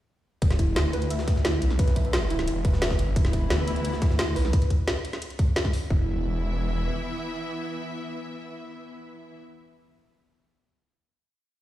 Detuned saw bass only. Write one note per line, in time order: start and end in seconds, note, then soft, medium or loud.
0.42 0.75 E1 loud
0.76 1.61 D2 loud
1.62 2.46 B1 loud
2.48 2.98 E1 loud
2.99 3.15 G1 medium
3.16 3.49 E1 loud
3.50 4.35 D2 loud
4.36 4.52 B1 loud
5.90 6.89 E1 loud